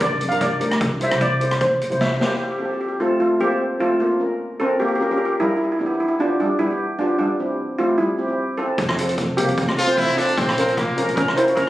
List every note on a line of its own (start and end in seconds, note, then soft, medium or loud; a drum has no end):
0.00 0.10 G2 medium
0.00 0.11 D4 medium
0.00 0.12 G4 medium
0.00 0.12 A#4 medium
0.00 0.29 D5 medium
0.00 kick loud
0.00 closed hi-hat medium
0.21 0.30 F2 medium
0.21 closed hi-hat medium
0.29 0.56 G2 medium
0.29 0.49 D4 medium
0.29 0.49 G4 medium
0.29 0.50 A#4 medium
0.29 0.42 F5 loud
0.29 closed hi-hat medium
0.41 0.60 D5 medium
0.41 kick medium
0.41 closed hi-hat medium
0.60 0.78 D2 medium
0.60 0.81 D4 medium
0.60 0.81 G4 medium
0.60 0.81 A#4 medium
0.60 closed hi-hat medium
0.71 cross-stick medium
0.71 closed hi-hat medium
0.81 0.90 C2 medium
0.81 kick loud
0.81 closed hi-hat medium
0.92 1.09 C2 medium
1.00 1.07 E4 medium
1.00 1.07 G4 medium
1.00 1.08 C5 medium
1.00 1.23 E5 medium
1.00 closed hi-hat medium
1.10 1.70 C2 medium
1.10 1.29 E4 medium
1.10 1.29 G4 medium
1.10 1.29 C5 medium
1.10 cross-stick medium
1.10 closed hi-hat medium
1.21 1.59 D5 loud
1.21 kick medium
1.21 closed hi-hat medium
1.40 1.71 E4 medium
1.40 1.71 G4 medium
1.40 1.71 C5 medium
1.40 closed hi-hat medium
1.51 cross-stick medium
1.51 closed hi-hat medium
1.61 2.02 C5 medium
1.61 kick loud
1.61 closed hi-hat medium
1.81 1.90 A#1 medium
1.81 closed hi-hat medium
1.90 2.16 C2 medium
1.90 2.09 E4 medium
1.90 2.09 G4 medium
1.90 2.09 C5 medium
1.90 closed hi-hat medium
2.01 2.38 E5 medium
2.01 kick medium
2.01 snare medium
2.19 2.38 E2 medium
2.19 2.29 A#3 medium
2.19 2.40 E4 medium
2.19 2.41 G4 medium
2.19 2.28 G4 medium
2.19 2.41 C5 medium
2.19 snare medium
2.29 2.34 G4 medium
2.35 2.42 G4 medium
2.43 2.50 G4 medium
2.52 2.57 G4 medium
2.59 2.85 C4 medium
2.59 2.85 F4 medium
2.59 2.64 G4 medium
2.59 2.85 A4 medium
2.66 2.72 G4 medium
2.74 2.79 G4 medium
2.81 2.87 G4 medium
2.88 2.96 G4 medium
3.00 3.20 A3 medium
3.00 3.25 C4 medium
3.00 3.19 F4 medium
3.00 3.25 F4 medium
3.00 3.25 A4 medium
3.20 3.40 A3 medium
3.20 3.39 F4 medium
3.40 3.78 A#3 medium
3.40 3.47 C4 medium
3.40 3.47 F4 medium
3.40 3.82 G4 loud
3.40 3.47 A4 medium
3.50 3.69 C4 medium
3.50 3.69 F4 medium
3.50 3.69 C5 medium
3.80 3.90 A3 medium
3.80 4.00 C4 medium
3.80 4.00 F4 medium
3.80 3.89 F4 medium
3.80 4.01 A4 medium
4.00 4.38 A#3 medium
4.00 4.37 F4 medium
4.20 4.44 C#4 medium
4.20 4.44 F4 medium
4.20 4.45 A#4 medium
4.60 4.79 C4 medium
4.60 4.84 C#4 medium
4.60 4.84 F4 medium
4.60 4.81 A4 medium
4.60 4.85 A#4 medium
4.80 4.88 A#3 medium
4.80 4.87 G4 medium
4.88 4.94 G4 medium
4.95 5.01 G4 medium
5.00 5.06 C#4 medium
5.00 5.07 F4 medium
5.00 5.10 G4 medium
5.00 5.07 A#4 medium
5.11 5.29 C#4 medium
5.11 5.29 F4 medium
5.11 5.16 G4 medium
5.11 5.29 A#4 medium
5.18 5.24 G4 medium
5.25 5.33 G4 medium
5.40 5.48 G3 medium
5.40 5.60 C#4 medium
5.40 5.47 E4 loud
5.40 5.60 F4 medium
5.40 5.61 A#4 medium
5.48 5.55 E4 medium
5.56 5.63 E4 medium
5.64 5.71 E4 medium
5.72 5.78 E4 medium
5.79 6.04 B3 medium
5.79 6.04 D4 medium
5.79 5.85 E4 medium
5.79 6.05 G4 medium
5.86 5.93 E4 medium
5.94 5.99 E4 medium
6.00 6.07 E4 medium
6.08 6.16 E4 medium
6.19 6.44 B3 medium
6.19 6.44 D4 medium
6.19 6.39 D4 medium
6.19 6.39 F4 medium
6.19 6.44 G4 medium
6.40 6.50 G3 medium
6.40 6.49 D4 medium
6.59 6.97 G3 medium
6.59 6.65 B3 medium
6.59 6.66 D4 medium
6.59 7.00 E4 loud
6.59 6.66 G4 medium
6.70 6.88 B3 medium
6.70 6.88 D4 medium
6.70 6.88 G4 medium
6.99 7.19 B3 medium
6.99 7.17 D4 loud
6.99 7.20 D4 medium
6.99 7.19 F4 medium
6.99 7.20 G4 medium
7.19 7.57 G3 medium
7.19 7.56 D4 medium
7.39 7.63 C4 medium
7.39 7.64 E4 medium
7.39 7.64 G4 medium
7.78 7.98 A3 medium
7.78 8.03 C4 medium
7.78 8.03 E4 medium
7.78 7.99 F4 medium
7.78 8.03 G4 medium
7.98 8.55 G3 medium
7.98 8.54 E4 medium
8.18 8.25 C4 medium
8.18 8.25 E4 medium
8.18 8.25 G4 medium
8.28 8.46 C4 medium
8.28 8.47 E4 medium
8.28 8.47 G4 medium
8.58 8.78 C4 medium
8.58 9.34 C4 medium
8.58 8.78 E4 medium
8.58 9.40 A4 loud
8.58 8.78 A4 medium
8.78 9.28 F2 loud
8.78 kick loud
8.78 closed hi-hat medium
8.89 cross-stick loud
8.96 9.21 C4 medium
8.96 9.22 F4 medium
8.96 9.22 A4 medium
8.96 closed hi-hat loud
9.09 closed hi-hat medium
9.18 kick medium
9.18 closed hi-hat medium
9.37 9.47 C2 medium
9.37 11.13 A#3 medium
9.37 9.62 C4 medium
9.37 9.62 F4 medium
9.37 11.22 G4 loud
9.37 9.62 G4 medium
9.37 closed hi-hat loud
9.48 9.65 F2 medium
9.48 closed hi-hat medium
9.58 kick loud
9.58 closed hi-hat medium
9.68 cross-stick medium
9.77 9.84 C4 medium
9.77 9.84 F4 medium
9.77 9.99 F4 loud
9.77 9.84 A4 medium
9.77 closed hi-hat loud
9.87 10.06 C4 loud
9.87 10.06 F4 medium
9.87 10.06 C5 medium
9.87 closed hi-hat medium
9.98 10.20 E4 loud
9.98 kick medium
9.98 closed hi-hat medium
10.08 cross-stick medium
10.16 10.37 C4 medium
10.16 10.40 D4 loud
10.16 10.37 F4 medium
10.16 10.38 A4 loud
10.16 closed hi-hat medium
10.29 closed hi-hat medium
10.38 10.88 A#1 loud
10.38 10.79 C4 loud
10.38 kick loud
10.38 closed hi-hat medium
10.49 cross-stick loud
10.57 10.81 C#4 medium
10.57 10.82 F4 medium
10.57 10.82 A#4 medium
10.57 closed hi-hat loud
10.68 closed hi-hat medium
10.77 11.08 A#3 medium
10.77 kick medium
10.77 cross-stick medium
10.77 closed hi-hat medium
10.97 11.06 F2 medium
10.97 11.21 C#4 medium
10.97 11.21 F4 medium
10.97 11.21 A#4 loud
10.97 closed hi-hat medium
11.08 11.25 A#1 medium
11.08 closed hi-hat medium
11.16 11.36 C#4 medium
11.16 11.37 A#4 loud
11.16 kick loud
11.16 closed hi-hat medium
11.28 cross-stick medium
11.36 11.43 C#4 medium
11.36 11.56 E4 medium
11.36 11.43 F4 medium
11.36 11.43 A#4 medium
11.36 11.57 C5 loud
11.36 closed hi-hat medium
11.46 11.65 C#4 medium
11.46 11.65 F4 medium
11.46 11.65 C#5 medium
11.46 closed hi-hat medium
11.56 11.69 C#4 medium
11.56 11.69 A#4 loud
11.56 kick loud
11.56 closed hi-hat medium